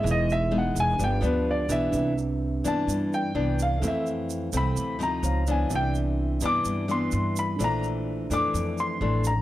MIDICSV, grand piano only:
0, 0, Header, 1, 2, 480
1, 0, Start_track
1, 0, Key_signature, 0, "major"
1, 0, Tempo, 471698
1, 48, Time_signature, 4, 2, 24, 8
1, 9585, End_track
2, 0, Start_track
2, 0, Title_t, "Grand piano"
2, 0, Program_c, 0, 0
2, 112, Note_on_c, 0, 75, 83
2, 314, Note_off_c, 0, 75, 0
2, 327, Note_on_c, 0, 76, 93
2, 541, Note_off_c, 0, 76, 0
2, 591, Note_on_c, 0, 78, 66
2, 793, Note_off_c, 0, 78, 0
2, 814, Note_on_c, 0, 80, 109
2, 1025, Note_off_c, 0, 80, 0
2, 1056, Note_on_c, 0, 79, 89
2, 1265, Note_off_c, 0, 79, 0
2, 1267, Note_on_c, 0, 71, 58
2, 1491, Note_off_c, 0, 71, 0
2, 1534, Note_on_c, 0, 74, 75
2, 1744, Note_off_c, 0, 74, 0
2, 1748, Note_on_c, 0, 76, 76
2, 2185, Note_off_c, 0, 76, 0
2, 2723, Note_on_c, 0, 81, 83
2, 3154, Note_off_c, 0, 81, 0
2, 3197, Note_on_c, 0, 79, 81
2, 3630, Note_off_c, 0, 79, 0
2, 3688, Note_on_c, 0, 77, 81
2, 3902, Note_off_c, 0, 77, 0
2, 3944, Note_on_c, 0, 76, 68
2, 4150, Note_off_c, 0, 76, 0
2, 4652, Note_on_c, 0, 83, 94
2, 5078, Note_off_c, 0, 83, 0
2, 5119, Note_on_c, 0, 82, 82
2, 5551, Note_off_c, 0, 82, 0
2, 5608, Note_on_c, 0, 80, 67
2, 5822, Note_off_c, 0, 80, 0
2, 5856, Note_on_c, 0, 79, 85
2, 6066, Note_off_c, 0, 79, 0
2, 6568, Note_on_c, 0, 86, 107
2, 6996, Note_off_c, 0, 86, 0
2, 7035, Note_on_c, 0, 84, 79
2, 7469, Note_off_c, 0, 84, 0
2, 7520, Note_on_c, 0, 83, 82
2, 7737, Note_off_c, 0, 83, 0
2, 7777, Note_on_c, 0, 82, 87
2, 7986, Note_off_c, 0, 82, 0
2, 8481, Note_on_c, 0, 86, 100
2, 8912, Note_off_c, 0, 86, 0
2, 8956, Note_on_c, 0, 84, 78
2, 9389, Note_off_c, 0, 84, 0
2, 9432, Note_on_c, 0, 82, 74
2, 9585, Note_off_c, 0, 82, 0
2, 9585, End_track
0, 0, End_of_file